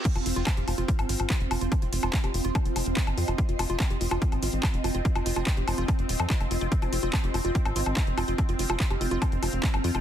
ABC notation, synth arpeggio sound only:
X:1
M:4/4
L:1/16
Q:1/4=144
K:Cphr
V:1 name="Synth arpeggio sound"
z F F F g G F F z2 F z3 F F | z F F F g G F F z2 F z3 F F | z F F F g G F F z2 F z3 F F | z F F F g G F F z2 F z3 F F |
z F F F z G F F g z F z3 F F | z F F F z G F F g z F z3 F F |]